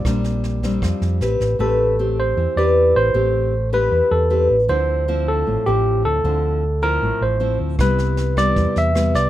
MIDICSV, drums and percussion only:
0, 0, Header, 1, 2, 480
1, 0, Start_track
1, 0, Key_signature, 0, "minor"
1, 0, Tempo, 387347
1, 55, Time_signature, 4, 2, 24, 8
1, 11521, End_track
2, 0, Start_track
2, 0, Title_t, "Drums"
2, 61, Note_on_c, 9, 36, 56
2, 62, Note_on_c, 9, 37, 61
2, 62, Note_on_c, 9, 38, 24
2, 185, Note_off_c, 9, 36, 0
2, 186, Note_off_c, 9, 37, 0
2, 186, Note_off_c, 9, 38, 0
2, 301, Note_on_c, 9, 38, 22
2, 425, Note_off_c, 9, 38, 0
2, 542, Note_on_c, 9, 38, 24
2, 666, Note_off_c, 9, 38, 0
2, 778, Note_on_c, 9, 36, 22
2, 782, Note_on_c, 9, 38, 22
2, 902, Note_off_c, 9, 36, 0
2, 906, Note_off_c, 9, 38, 0
2, 1018, Note_on_c, 9, 36, 55
2, 1023, Note_on_c, 9, 37, 57
2, 1023, Note_on_c, 9, 38, 22
2, 1142, Note_off_c, 9, 36, 0
2, 1147, Note_off_c, 9, 37, 0
2, 1147, Note_off_c, 9, 38, 0
2, 1261, Note_on_c, 9, 38, 22
2, 1385, Note_off_c, 9, 38, 0
2, 1499, Note_on_c, 9, 38, 24
2, 1623, Note_off_c, 9, 38, 0
2, 1737, Note_on_c, 9, 36, 21
2, 1742, Note_on_c, 9, 38, 22
2, 1861, Note_off_c, 9, 36, 0
2, 1866, Note_off_c, 9, 38, 0
2, 9651, Note_on_c, 9, 36, 60
2, 9652, Note_on_c, 9, 37, 61
2, 9652, Note_on_c, 9, 38, 25
2, 9775, Note_off_c, 9, 36, 0
2, 9775, Note_off_c, 9, 37, 0
2, 9775, Note_off_c, 9, 38, 0
2, 9893, Note_on_c, 9, 38, 22
2, 10017, Note_off_c, 9, 38, 0
2, 10126, Note_on_c, 9, 38, 25
2, 10250, Note_off_c, 9, 38, 0
2, 10372, Note_on_c, 9, 36, 22
2, 10374, Note_on_c, 9, 37, 58
2, 10374, Note_on_c, 9, 38, 22
2, 10496, Note_off_c, 9, 36, 0
2, 10498, Note_off_c, 9, 37, 0
2, 10498, Note_off_c, 9, 38, 0
2, 10612, Note_on_c, 9, 38, 24
2, 10613, Note_on_c, 9, 36, 54
2, 10736, Note_off_c, 9, 38, 0
2, 10737, Note_off_c, 9, 36, 0
2, 10853, Note_on_c, 9, 38, 23
2, 10977, Note_off_c, 9, 38, 0
2, 11095, Note_on_c, 9, 37, 59
2, 11095, Note_on_c, 9, 38, 23
2, 11219, Note_off_c, 9, 37, 0
2, 11219, Note_off_c, 9, 38, 0
2, 11332, Note_on_c, 9, 36, 24
2, 11334, Note_on_c, 9, 38, 24
2, 11456, Note_off_c, 9, 36, 0
2, 11458, Note_off_c, 9, 38, 0
2, 11521, End_track
0, 0, End_of_file